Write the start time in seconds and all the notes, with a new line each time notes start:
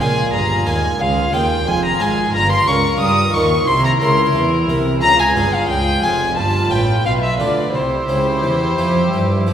Already playing: F4 G#4
0.00 A#1 A#2 G#3 F4 G#4 G#5
0.33 G1 G2 A#5
0.66 D#2 G#3 F4 G#4 G#5
0.99 C#2 F4 G#4 F5
1.32 D#2 G#3 F4 G#4 G5
1.66 F1 F2 F4 G#4 G#5
1.84 A#5
2.00 G#1 G#2 G#3 F4 G#4 G#5
2.33 G1 G2 F4 A#4 A#5
2.50 C6
2.66 C#2 C#3 F4 A#4 C#6
3.00 G2 G3 D#6
3.33 D#2 D#3 F4 A#4 C#6
3.67 C2 C3 E4 A#4 C6
3.85 A#5
4.00 C#2 C#3 E4 A#4 C6
4.34 E2 E3
4.68 C2 C3 E4 A#4
5.02 C#2 C#3 F4 G#4 A#5
5.19 G#5
5.36 G1 G2 F4 G#4
5.53 F5
5.69 C#2 G5
6.03 F1 F2 F4 G#4 G#5
6.36 G1 G2 F4 B4 A5
6.70 A1 A2 F4 B4 G5
7.04 B1 B2 F4 B4 F5
7.22 E5
7.39 D2 D3 F4 B4 D5
7.73 C2 C3 E4 G4 C5
8.08 C#2 C#3 E4 C5
8.43 E2 E3
8.78 F2 F3 E4 C5
9.12 G2 G3
9.47 F2 F3 E4 C5